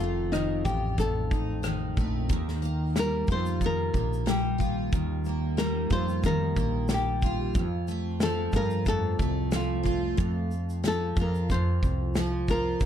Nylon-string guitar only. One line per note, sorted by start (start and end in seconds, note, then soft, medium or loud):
0.00 0.33 F4 medium
0.32 0.63 D#4 medium
0.65 0.95 G4 medium
1.00 1.93 A4 medium
2.99 3.31 A#4 loud
3.32 3.61 C5 loud
3.66 4.31 A#4 loud
4.30 4.76 G4 medium
5.58 5.92 A#4 loud
5.92 6.25 C5 loud
6.26 6.93 A#4 loud
6.94 7.39 G4 medium
8.23 8.56 A4 loud
8.56 8.88 A#4 loud
8.88 9.49 A4 loud
9.56 10.02 F4 medium
10.88 11.20 A4 medium
11.21 11.50 A#4 medium
11.51 12.50 C5 medium
12.51 12.86 A#4 medium